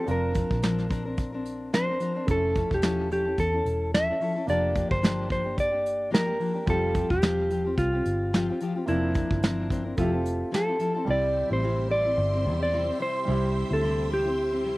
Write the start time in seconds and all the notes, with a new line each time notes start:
0.04 F1 F3 C4 D4 F4 A#4, closed hi-hat
0.10 A#4
0.34 F3 D4 A#4, kick, closed hi-hat
0.51 A#1, kick
0.62 F3 C4 D4 A#4, snare, closed hi-hat
0.78 snare
0.89 F3 C4 D4 A#4, kick, closed hi-hat
1.05 C4 D4 A#4
1.17 kick, closed hi-hat
1.32 C4 D4 A#4
1.45 closed hi-hat
1.73 F3 C4 D4 A#4 C5, snare, closed hi-hat
1.87 C4 D4 A#4
2.00 F3 C4 D4 A#4, closed hi-hat
2.15 C4 D4 A#4
2.26 F1 F3 A3 C#4 E4 A4, kick, closed hi-hat
2.31 A4
2.55 F3 C#4 E4 A4, kick, closed hi-hat
2.71 E1 G4, kick
2.82 F3 C#4 E4 A4, snare, closed hi-hat
3.10 F3 C#4 E4 G4 A4, closed hi-hat
3.25 C#4 E4 A4
3.38 E2 A4, kick, closed hi-hat
3.52 C#4 E4 A4
3.65 E1, closed hi-hat
3.94 F3 C#4 E4 A4 E5, snare, closed hi-hat
4.09 C#4 E4 A4
4.20 F3 C#4 E4 A4, open hi-hat
4.35 C#4 E4 A4
4.46 F1 F3 A#3 D4 F4 G4 D5, closed hi-hat
4.50 A5
4.74 F3 A#3 D4 G4, kick, closed hi-hat
4.91 G1 C5, kick
5.01 F3 A#3 D4 G4, snare, closed hi-hat
5.29 F3 A#3 D4 G4 C5, kick, closed hi-hat
5.44 A#3 D4 G4
5.58 D5, kick, closed hi-hat
5.71 A#3 D4 G4
5.86 closed hi-hat
6.11 F3 A#3 D4 G4 A#4, snare, closed hi-hat
6.26 A#3 D4 G4
6.39 F3 A#3 D4 G4, open hi-hat
6.54 A#3 D4 G4
6.66 F1 F3 G3 C4 F4 G4, kick, closed hi-hat
6.70 G4 A4
6.94 F3 C4 F4 G4, kick, closed hi-hat
7.10 E1 G4, kick
7.22 F3 C4 F4 G4, snare, closed hi-hat
7.50 F3 C4 F4 G4, closed hi-hat
7.64 C4 F4 G4
7.77 C2 F4, kick, closed hi-hat
7.92 C4 F4 G4
8.05 G1, closed hi-hat
8.33 F3 C4 F4 G4, snare, closed hi-hat
8.49 C4 F4 G4
8.60 F3 C4 F4 G4, closed hi-hat
8.75 C4 F4 G4
8.86 F1 F3 A#3 C4 D4 E4 A#4, closed hi-hat
8.90 F3
9.14 F3 C4 D4 A#4, kick, closed hi-hat
9.31 G1, kick
9.43 F3 C4 D4 A#4, snare, closed hi-hat
9.70 F3 C4 D4 A#4, kick, closed hi-hat
9.84 C4 D4 A#4
9.96 F1 F3 A3 C4 E4 F4 A4 E5, kick, closed hi-hat
10.01 G4
10.12 C4 A4
10.26 closed hi-hat
10.51 F3 C4 E4 A4, snare, closed hi-hat
10.66 C4 E4 A4
10.79 F3 C4 E4 A4, closed hi-hat
10.95 C4 E4 A4
11.05 C2 C3 G3 C4 E4 G4 C5 E5 C6
11.10 G4 D5
11.49 A1 G3 C4 E4 C5
11.63 C3 G3 C4 E4
11.90 C3 G3 C4 E4 D5
12.06 G3 C4 E4
12.18 G1
12.33 G3 C4 E4
12.45 E2 C3 G3 C4 E4
12.59 G3 C4 E4 D5
12.72 C3 G3 C4 E4
12.87 G3 C4 E4
12.99 C3 G3 C4 E4 C5
13.25 C2 C3 G3 C4
13.29 E4 G4
13.70 D2 G3 C4 E4 A4
13.83 C3 G3 C4 E4
14.10 C3 G3 C4 E4 G4
14.25 G3 C4 E4
14.52 G3 C4 E4
14.64 C3 G3 C4 E4